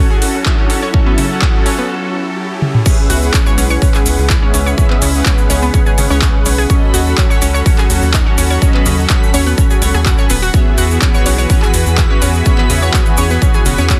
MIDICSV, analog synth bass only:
0, 0, Header, 1, 2, 480
1, 0, Start_track
1, 0, Key_signature, 4, "minor"
1, 0, Tempo, 480000
1, 939, Time_signature, 4, 2, 24, 8
1, 13996, End_track
2, 0, Start_track
2, 0, Title_t, "Analog synth bass"
2, 0, Program_c, 0, 38
2, 218, Note_on_c, 0, 42, 102
2, 325, Note_off_c, 0, 42, 0
2, 344, Note_on_c, 0, 42, 81
2, 546, Note_off_c, 0, 42, 0
2, 698, Note_on_c, 0, 42, 92
2, 904, Note_off_c, 0, 42, 0
2, 1178, Note_on_c, 0, 42, 99
2, 1384, Note_off_c, 0, 42, 0
2, 1658, Note_on_c, 0, 42, 96
2, 1864, Note_off_c, 0, 42, 0
2, 3099, Note_on_c, 0, 37, 98
2, 3304, Note_off_c, 0, 37, 0
2, 3579, Note_on_c, 0, 35, 99
2, 3784, Note_off_c, 0, 35, 0
2, 4059, Note_on_c, 0, 37, 105
2, 4166, Note_off_c, 0, 37, 0
2, 4185, Note_on_c, 0, 37, 85
2, 4387, Note_off_c, 0, 37, 0
2, 4539, Note_on_c, 0, 37, 92
2, 4744, Note_off_c, 0, 37, 0
2, 5019, Note_on_c, 0, 37, 97
2, 5224, Note_off_c, 0, 37, 0
2, 5499, Note_on_c, 0, 37, 90
2, 5704, Note_off_c, 0, 37, 0
2, 5979, Note_on_c, 0, 32, 91
2, 6086, Note_off_c, 0, 32, 0
2, 6105, Note_on_c, 0, 37, 94
2, 6307, Note_off_c, 0, 37, 0
2, 6459, Note_on_c, 0, 35, 86
2, 6664, Note_off_c, 0, 35, 0
2, 6939, Note_on_c, 0, 39, 97
2, 7144, Note_off_c, 0, 39, 0
2, 7419, Note_on_c, 0, 37, 96
2, 7624, Note_off_c, 0, 37, 0
2, 7899, Note_on_c, 0, 39, 105
2, 8006, Note_off_c, 0, 39, 0
2, 8025, Note_on_c, 0, 39, 83
2, 8227, Note_off_c, 0, 39, 0
2, 8379, Note_on_c, 0, 39, 89
2, 8584, Note_off_c, 0, 39, 0
2, 8859, Note_on_c, 0, 39, 92
2, 9064, Note_off_c, 0, 39, 0
2, 9339, Note_on_c, 0, 39, 95
2, 9544, Note_off_c, 0, 39, 0
2, 9819, Note_on_c, 0, 37, 106
2, 9926, Note_off_c, 0, 37, 0
2, 9945, Note_on_c, 0, 39, 105
2, 10146, Note_off_c, 0, 39, 0
2, 10299, Note_on_c, 0, 27, 105
2, 10504, Note_off_c, 0, 27, 0
2, 10779, Note_on_c, 0, 40, 100
2, 10984, Note_off_c, 0, 40, 0
2, 11259, Note_on_c, 0, 35, 98
2, 11464, Note_off_c, 0, 35, 0
2, 11738, Note_on_c, 0, 40, 107
2, 11845, Note_off_c, 0, 40, 0
2, 11864, Note_on_c, 0, 40, 81
2, 12066, Note_off_c, 0, 40, 0
2, 12219, Note_on_c, 0, 40, 90
2, 12424, Note_off_c, 0, 40, 0
2, 12698, Note_on_c, 0, 40, 100
2, 12904, Note_off_c, 0, 40, 0
2, 13178, Note_on_c, 0, 40, 93
2, 13384, Note_off_c, 0, 40, 0
2, 13658, Note_on_c, 0, 28, 87
2, 13765, Note_off_c, 0, 28, 0
2, 13784, Note_on_c, 0, 40, 93
2, 13986, Note_off_c, 0, 40, 0
2, 13996, End_track
0, 0, End_of_file